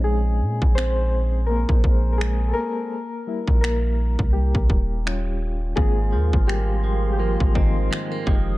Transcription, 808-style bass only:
X:1
M:4/4
L:1/16
Q:"Swing 16ths" 1/4=84
K:Ab
V:1 name="808-style bass" clef=bass
B,,,2 B,, B,,,6 B,,, B,,,4 z2 | z3 B,,,4 C,,2 C,, E,,,6 | A,,,2 E,, A,,,6 A,,,3 z2 F,,,2 |]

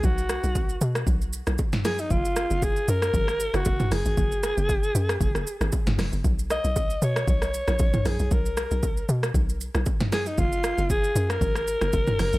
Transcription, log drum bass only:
X:1
M:4/4
L:1/16
Q:"Swing 16ths" 1/4=116
K:Blyd
V:1 name="Log drum bass" clef=bass
B,,,3 B,,,3 B,,2 B,,,3 B,,, z4 | F,,,3 F,,,3 F,,2 G,,,3 F,,, F,,,2 F,,, G,,, | F,,,3 F,,,3 F,,2 F,,, F,,, z G,,, z F,,, E,,, F,,, | B,,,3 B,,,3 B,,2 B,,,3 A,,, A,,,2 A,,, B,,, |
B,,,3 B,,,3 B,,2 B,,,3 B,,, z4 | F,,,3 F,,,3 F,,2 G,,,3 F,,, F,,,2 F,,, G,,, |]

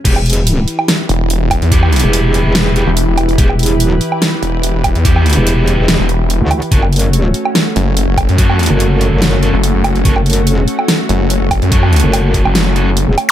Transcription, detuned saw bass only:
X:1
M:4/4
L:1/16
Q:"Swing 16ths" 1/4=144
K:Edor
V:1 name="Detuned saw bass" clef=bass
z8 z2 E,,,3 E,,,2 E,,- | E,,3 z8 E,,,2 E,,,2 E,,, | z8 z2 E,,,3 E,,,2 E,,- | E,,3 z6 E,,,4 z3 |
z8 z2 F,,,3 F,,,2 F,,- | F,,3 z8 F,,,2 F,,,2 F,,, | z8 z2 F,,,3 F,,,2 F,,- | F,,3 z4 F,,,6 z3 |]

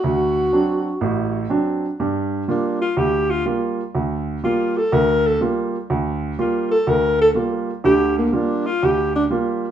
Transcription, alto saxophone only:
X:1
M:4/4
L:1/8
Q:"Swing" 1/4=123
K:Gm
V:1 name="Alto saxophone"
^F6 z2 | z2 D F G F z2 | z2 F A B A z2 | z2 F A B A z2 |
G B, D F G D z2 |]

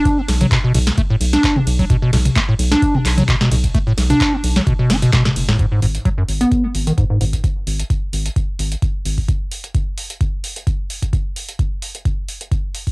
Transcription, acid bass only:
X:1
M:4/4
L:1/16
Q:"Swing 16ths" 1/4=130
K:B
V:1 name="Acid bass" clef=bass
=D B, z F, B,, B,, B,, z =A, =A,, z D2 B, z F, | B,, B,, B,, z =A, =A,, z =D2 B, z F, B,, B,, B,, z | =A, =A,, z =D2 B, z F, B,, B,, D B,, B,, B,, z A,, | G,, G,, G,, z F, F,, z B,2 G, z D, G,, G,, G,, z |
z16 | z16 | z16 |]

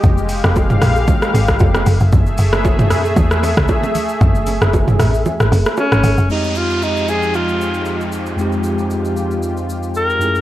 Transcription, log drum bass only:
X:1
M:4/4
L:1/16
Q:"Swing 16ths" 1/4=115
K:Fm
V:1 name="Log drum bass" clef=bass
F,,,3 F,,,3 B,,,3 z A,,,2 F,,,2 _G,,, G,,, | _G,,,2 G,,,4 _G,,2 _F,,3 D,, z4 | _G,,,3 G,,,3 =A,,,2 z _A,,, G,,, z2 A,,, A,,, G,,, | z16 |
z16 |]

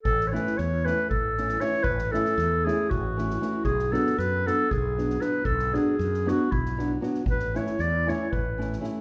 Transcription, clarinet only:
X:1
M:7/8
L:1/16
Q:1/4=116
K:A
V:1 name="Clarinet"
A3/2 c/2 B2 c2 B2 A4 c2 | B2 A4 G2 F6 | G2 A2 B2 A2 G4 B2 | A2 G4 F2 E4 z2 |
B2 c2 d2 c2 B4 z2 |]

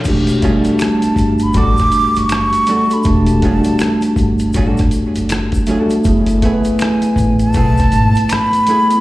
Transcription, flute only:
X:1
M:4/4
L:1/16
Q:"Swing 16ths" 1/4=80
K:Edor
V:1 name="Flute"
z4 a3 b d'3 c'4 b | a8 z8 | z4 ^g3 a4- a b4 |]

